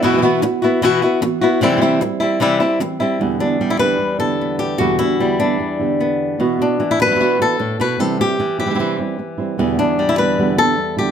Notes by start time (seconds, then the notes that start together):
0.02 B2 E3 B3 E4 F#4
0.13 E3 B3 E4 F#4
0.17 E3 B3 E4 F#4
0.22 B2 E3 B3 E4 F#4
0.41 B3 E4 F#4, muted nylon-string guitar stroke
0.62 B3 E4 F#4
0.81 B2 E3 B3 E4 F#4, muted nylon-string guitar stroke
1.02 B3 E4 F#4
1.21 E3 B3 E4 F#4, muted nylon-string guitar stroke
1.41 B3 E4 F#4
1.61 C3 E3 G3 C4 E4
1.72 E3 G3 C4 E4
1.77 E3 G3 C4 E4
1.81 C3 E3 G3 C4 E4
2.00 G3 C4 E4, muted nylon-string guitar stroke
2.20 G3 C4 E4
2.40 C3 E3 G3 C4 E4, muted nylon-string guitar stroke
2.60 G3 C4 E4
2.80 E3 G3 C4 E4, muted nylon-string guitar stroke
2.99 G3 C4 E4
3.19 E2 B2 D3 G3 B3 E4
3.39 D3 G3 B3 D4 E4
3.59 D3 G3 B3 E4
3.70 E4
3.79 D3 G3 B3 E4 B4
3.99 muted nylon-string guitar stroke
4.18 D3 G3 B3 E4 A4
4.41 B3
4.59 G4
4.78 E2 B2 D3 G3 B3 E4 F#4
4.99 D3 G3 B3 E4
5.19 D3 G3 B3 E4
5.39 D3 G3 B3 D4 E4
5.59 muted nylon-string guitar stroke
5.79 D3 G3 B3 E4
6.00 B3
6.39 B2 E3 B3 E4 F#4
6.59 B3 D4 E4 F#4
6.79 E3, muted nylon-string guitar stroke
6.91 E4
6.99 B3 E4 F#4 B4
7.06 E3 B3 E4 F#4
7.10 E3 B3 E4 F#4
7.15 E3 B3 E4 F#4
7.20 B2 E3 B3 E4 F#4
7.39 B3 E4 F#4 A4
7.59 A2, muted nylon-string guitar stroke
7.79 B2 B3 E4 F#4 B4
7.98 C3 E3 G3 C4 E4 A4
8.19 G3 C4 E4 G4
8.39 E3, muted nylon-string guitar stroke
8.59 G3 C4 E4 G4
8.66 E3 G3 C4 E4
8.70 E3 G3 C4 E4
8.75 E3 G3 C4 E4
8.79 C3 E3 G3 C4 E4
8.99 G3 C4 E4
9.18 muted nylon-string guitar stroke
9.38 G3 C4 E4
9.58 E2 B2 D3 G3 B3 E4
9.78 D3 G3 B3 D4 E4
9.98 G3, muted nylon-string guitar stroke
10.09 E4
10.18 D3 G3 B3 E4 B4
10.37 E2 B2 D3 G3 B3 E4
10.58 D3 G3 B3 E4 A4
10.77 muted nylon-string guitar stroke
10.96 D3 G3 B3 E4 G4